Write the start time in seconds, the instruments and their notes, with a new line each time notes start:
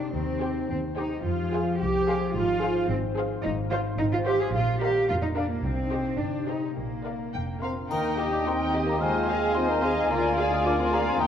Already playing: harp C3 G3 C4 D#4 G4 C5, cello section D4
0.14 double bass section D#2, harp D#3, cello section C4
0.32 harp G4
0.41 viola section G4, violin section C5 G5
0.51 harp C5
0.69 double bass section D#2, harp C4, cello section C4
0.87 harp C5
0.97 cello section D#4, viola section G4, violin section C5 G5
1.06 harp G4
1.25 double bass section F2, harp F3, cello section F4
1.43 harp G#4
1.52 viola section G#4, violin section C5 F5
1.61 harp C5
1.79 double bass section C2, harp C4, cello section G4
1.99 harp C5
2.07 viola section G#4, violin section C5 F5
2.17 harp G#4
2.34 double bass section G#1, harp G#2, cello section F4
2.54 harp F4
2.62 viola section G#4, violin section C5 F5
2.73 harp C5
2.89 double bass section G#1, cello section C4, harp C4
3.09 harp C5
3.17 viola section G#4, violin section C5 F5
3.27 harp F4
3.44 double bass section G#1, harp G#2, cello section D#4
3.64 harp F4
3.72 cello section F4, violin section C5 F5, viola section C5
3.81 harp C5
3.99 double bass section G#1, harp C4, cello section D#4
4.13 cello section F4
4.18 harp C5
4.25 cello section G4, violin section C5 F5, viola section C5
4.37 harp F4
4.41 cello section G#4
4.54 double bass section A#1, harp A#2, cello section F4
4.73 harp F4
4.81 cello section G4, viola section A#4, violin section D5 F5
4.91 harp A#4
5.09 double bass section F1, harp D4, cello section F4
5.22 cello section D#4
5.29 harp A#4
5.35 cello section D4, viola section A#4, violin section D5 F5
5.47 cello section A#3, harp F4
5.64 double bass section C2, harp C3, cello section C4
5.84 harp D#4
5.91 viola section G4, violin section C5 D#5
6.02 harp G4
6.19 double bass section G1, harp C4, cello section D4
6.39 harp G4
6.47 cello section D#4, viola section G4, violin section C5 D#5
6.58 harp D#4
6.76 double bass section A#1, harp A#2, cello section A#3
6.96 harp F4
7.04 viola section A#4, violin section D5 F5
7.15 harp A#4
7.33 double bass section F1, harp D4, violin section G5
7.54 harp A#4
7.62 french horn section C4, viola section A#4, violin section F5, xylophone C6
7.72 harp F4
7.89 cello section D#2, double bass section D#2, harp D#3, french horn section A#3, viola section D#4, violin section A#4 G5, oboe D#5, flute G5, xylophone A#5, triangle
8.11 harp A#3
8.18 violin section G4 D#5, viola section G4
8.29 french horn section D4, harp G4
8.33 xylophone D6
8.45 french horn section C4, viola section D#4, bassoon D#4, violin section A#4 G5, harp D#5, xylophone C6
8.66 harp G4
8.74 viola section G4, violin section G4 D#5
8.84 french horn section A#3, harp D#4
8.89 xylophone A#5
8.99 harp D#3, french horn section G#3, bassoon C4, viola section F4, violin section C5 D#5, oboe F5, flute G#5, xylophone G#5
9.21 harp D#4
9.29 viola section G#4, violin section D#5 F5
9.39 harp F4
9.55 french horn section C4, bassoon D#4, viola section F4, violin section C5 D#5, harp C5, xylophone C6
9.69 french horn section A#3, xylophone A#5
9.75 harp F4
9.83 french horn section C4, viola section G#4, violin section D#5 F5, xylophone C6
9.93 french horn section G#3, harp C4
9.99 xylophone G#5
10.08 cello section D2, double bass section D2, harp D3, french horn section A#3, viola section F4, bassoon F4, violin section A#4 D5, xylophone A#5
10.29 harp D4
10.38 viola section G#4, violin section D5 F5
10.47 french horn section D#4, harp F4
10.54 xylophone D#6
10.64 french horn section D4, viola section F4, harp G#4, violin section A#4 D5, xylophone D6
10.78 french horn section C4, xylophone C6
10.84 harp F4
10.92 french horn section A#3, viola section G#4, violin section D5 F5, xylophone A#5
11.02 harp G#3
11.07 french horn section C4, xylophone C6
11.19 double bass section D#2, cello section D#2, harp D#3, french horn section A#3, viola section D#4, bassoon D#4, violin section A#4 G5, oboe D#5, flute G5, xylophone A#5